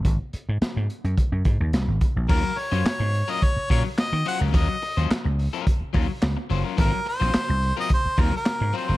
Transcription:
<<
  \new Staff \with { instrumentName = "Harmonica" } { \time 4/4 \key aes \mixolydian \tempo 4 = 107 r1 | bes'8 des''4~ des''16 ees''16 des''8 des''8 ees''8 ges''8 | ees''4 r2. | bes'8 c''4~ c''16 ees''16 c''8 bes'16 bes'8. c''8 | }
  \new Staff \with { instrumentName = "Clean electric guitar" } { \time 4/4 \key aes \mixolydian r1 | <ges des' f' bes'>8 r16 <ges des' f' c''>16 r8. <ges des' f' bes'>8 r16 <ges des' f' bes'>16 r8. <ges des' f' c''>16 <ges des' f' bes'>16 | <ges des' f' bes'>8 r16 <ges des' f' c''>16 r8. <ges des' f' bes'>8 r16 <ges des' f' bes'>16 r8. <ges des' f' c''>16 <ges des' f' bes'>16 | <ges c' f' bes'>8 r16 <ges c' f' c''>16 r8. <ges c' f' bes'>8 r16 <ges c' f' bes'>16 r8. <ges c' f' c''>16 <ges c' f' bes'>16 | }
  \new Staff \with { instrumentName = "Slap bass" } { \clef bass \time 4/4 \key aes \mixolydian aes,,16 r8 aes,16 r16 aes,16 r16 ges,16 r16 ges,16 aes,16 ees,16 c,16 aes,,16 r16 bes,,16 | ees,16 r8 ges,16 r16 aes,8 r8. bes,16 r8 ees16 r16 des,16 | ees,16 r8 ees,16 r16 des,8 r8. ees,16 r16 des,16 r16 ges,,16 r16 | aes,,16 r8 bes,,16 r16 c,8 r8. ees,16 r8 aes,16 r16 ges,,16 | }
  \new DrumStaff \with { instrumentName = "Drums" } \drummode { \time 4/4 <hh bd>8 hh8 <hh sn>8 hh16 hh16 <hh bd>8 <hh bd>8 <hh sn>8 <hh bd>8 | <cymc bd>8 hho16 hh16 <hc hh sn>8 hho16 hh16 <hh bd>8 <hho bd>8 <hc hh sn>8 hho8 | <hh bd>8 hho16 hh16 <hc hh sn>8 hho16 hh16 <hh bd>8 <hho bd>8 <hc hh sn>8 hho8 | <hh bd>8 hho16 hh16 <hc hh sn>8 hho16 hh16 <hh bd>8 <hho bd>8 <hc hh sn>8 hho8 | }
>>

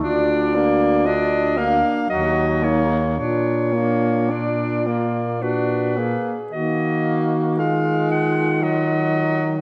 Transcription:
<<
  \new Staff \with { instrumentName = "Clarinet" } { \time 3/4 \key ees \minor \tempo 4 = 56 d''4 ees''8 f''8 ees''8 des''8 | des''4 d''4 ces''4 | ees''8. r16 f''8 ges''8 ees''4 | }
  \new Staff \with { instrumentName = "Alto saxophone" } { \time 3/4 \key ees \minor f'8 d'8 f'8 d'8 ges'8 ees'8 | f'8 d'8 f'4 ges'8 aes'8 | ges'4 f'2 | }
  \new Staff \with { instrumentName = "Tenor saxophone" } { \time 3/4 \key ees \minor d'8 bes8 d'8 bes8 ges8 bes8 | d'8 bes8 d'8 bes8 d'8 bes8 | bes4 aes4 ges4 | }
  \new Staff \with { instrumentName = "Baritone saxophone" } { \clef bass \time 3/4 \key ees \minor d,4.~ d,16 r16 ees,4 | bes,2~ bes,8 r8 | ees2. | }
>>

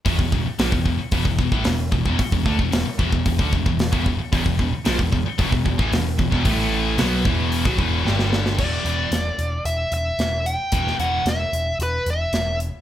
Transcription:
<<
  \new Staff \with { instrumentName = "Lead electric guitar" } { \time 4/4 \key e \minor \tempo 4 = 112 r1 | r1 | r1 | r1 |
d''2 e''8 e''4 g''8~ | g''8 fis''8 e''4 b'8 e''4 r8 | }
  \new Staff \with { instrumentName = "Distorted electric guitar" } { \clef bass \time 4/4 \key e \minor <e, b,>16 <e, b,>16 <e, b,>16 r16 <ais, f>16 <e, b,>16 <e, b,>16 r16 <e, b,>16 <e, b,>16 <e, b,>16 <a, e>16 <e, b,>8 <e, b,>16 <e, b,>16 | r16 <e, b,>16 <d a>16 <e, b,>16 <e, b,>16 r16 <e, b,>16 <e, b,>16 <e, b,>16 <d a>16 <e, b,>16 <e, b,>8 <e, b,>16 <e, b,>16 r16 | <e, b,>16 <e, b,>16 <e, b,>16 r16 <ais, f>16 <e, b,>16 <e, b,>16 r16 <e, b,>16 <e, b,>16 <e, b,>16 <a, e>16 <e, b,>8 <e, b,>16 <e, b,>16 | <a, e a>4 <b, fis b>8 <e, b, e>8. <b, fis>16 <e, b, e>8 <g, d g>4 |
<e, b, e>8 <e, b, e>8 r2. | <e, b, e>8 <e, b, e>8 r2. | }
  \new Staff \with { instrumentName = "Distorted electric guitar" } { \clef bass \time 4/4 \key e \minor r1 | r1 | <e, b,>16 <e, b,>16 <e, b,>16 r16 <ais, f>16 <e, b,>16 <e, b,>16 r16 <e, b,>16 <e, b,>16 <e, b,>16 <a, e>16 <e, b,>8 <e, b,>16 <e, b,>16 | <a, e a>4 <b, fis b>8 <e, b, e>8. <b, fis>16 <e, b, e>8 <g, d g>4 |
r1 | r1 | }
  \new Staff \with { instrumentName = "Overdriven electric guitar" } { \clef bass \time 4/4 \key e \minor <e, b,>16 <e, b,>16 <e, b,>16 r16 <ais, f>16 <e, b,>16 <e, b,>16 r16 <e, b,>16 <e, b,>16 <e, b,>16 <a, e>16 <e, b,>8 <e, b,>16 <e, b,>16 | r16 <e, b,>16 <d a>16 <e, b,>16 <e, b,>16 r16 <e, b,>16 <e, b,>16 <e, b,>16 <d a>16 <e, b,>16 <e, b,>8 <e, b,>16 <e, b,>16 r16 | <e, b,>16 <e, b,>16 <e, b,>16 r16 <ais, f>16 <e, b,>16 <e, b,>16 r16 <e, b,>16 <e, b,>16 <e, b,>16 <a, e>16 <e, b,>8 <e, b,>16 <e, b,>16 | <a, e a>4 <b, fis b>8 <e, b, e>8. <b, fis>16 <e, b, e>8 <g, d g>4 |
<e, b, e>8 <e, b, e>8 r2. | <e, b, e>8 <e, b, e>8 r2. | }
  \new Staff \with { instrumentName = "Picked electric bass" } { \clef bass \time 4/4 \key e \minor e,,16 e,,16 e,,16 r16 ais,,16 e,,16 e,,16 r16 e,,16 e,,16 e,,16 a,,16 e,,8 e,,16 e,,16 | r16 e,,16 d,16 e,,16 e,,16 r16 e,,16 e,,16 e,,16 d,16 e,,16 e,,8 e,,16 e,,16 r16 | e,,16 e,,16 e,,16 r16 ais,,16 e,,16 e,,16 r16 e,,16 e,,16 e,,16 a,,16 e,,8 e,,16 e,,16 | a,,4 b,,8 e,,8. b,,16 e,,8 g,,4 |
e,,8 e,,8 e,,8 e,,8 e,,8 e,,8 e,,4 | e,,8 e,,8 e,,8 e,,8 e,,8 e,,8 e,,4 | }
  \new DrumStaff \with { instrumentName = "Drums" } \drummode { \time 4/4 <hho bd>16 bd16 bd8 <hho sn>16 bd16 bd8 <hho bd>16 bd16 bd16 bd16 <hho sn>8 bd16 bd16 | <hho bd>16 bd16 bd16 bd16 <hho sn>8 bd16 bd16 <hho bd>16 bd16 bd16 bd16 <hho sn>16 bd16 bd8 | <hho bd>16 bd16 bd8 <hho sn>16 bd16 bd8 <hho bd>16 bd16 bd16 bd16 <hho sn>8 bd16 bd16 | <hho bd>4 <hho sn>8 bd8 hho16 bd16 bd8 sn16 sn16 sn16 sn16 |
<cymc bd>8 hh8 <hh sn>8 hh8 hh8 hh8 <hh sn>8 hh8 | <hh bd>16 sn16 hh8 <hh sn>8 hh8 hh8 hh8 <hh sn>8 hh8 | }
>>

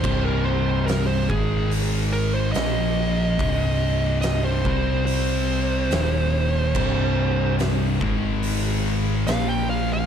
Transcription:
<<
  \new Staff \with { instrumentName = "Lead electric guitar" } { \time 4/4 \key c \minor \tempo 4 = 72 c''16 bes'16 c''16 c''16 bes'16 c''16 aes'8 r8 bes'16 c''16 ees''4~ | ees''4 ees''16 c''8. c''2~ | c''4 r2 f''16 g''16 f''16 f''16 | }
  \new Staff \with { instrumentName = "Distorted electric guitar" } { \clef bass \time 4/4 \key c \minor <c, g, c>4. <aes, ees aes>4. <bes, f bes>4 | <c, g, c>4. <c g c'>4. <ees, bes, ees>4 | <c, g, c>4. <aes, ees aes>4. <bes, f bes>4 | }
  \new Staff \with { instrumentName = "Distorted electric guitar" } { \clef bass \time 4/4 \key c \minor <c, g, c>4. <aes, ees aes>4. <bes, f bes>4 | <c, g, c>4. <c g c'>4. <ees, bes, ees>4 | <c, g, c>4. <aes, ees aes>4. <bes, f bes>4 | }
  \new Staff \with { instrumentName = "Distorted electric guitar" } { \clef bass \time 4/4 \key c \minor <c, g, c>4. <aes, ees aes>4. <bes, f bes>4 | <c, g, c>4. <c g c'>4. <ees, bes, ees>4 | <c, g, c>4. <aes, ees aes>4. <bes, f bes>4 | }
  \new Staff \with { instrumentName = "Picked electric bass" } { \clef bass \time 4/4 \key c \minor c,,4. aes,,4. bes,,4 | c,,4. c,4. ees,,4 | c,,4. aes,,4. bes,,4 | }
  \new DrumStaff \with { instrumentName = "Drums" } \drummode { \time 4/4 <cymc bd>4 <hho sn>8 bd8 hho4 <hho sn>4 | <hho bd>4 <hho sn>8 bd8 hho4 <hho sn>4 | <cymc bd>4 <hho sn>8 bd8 hho4 <hho sn>4 | }
>>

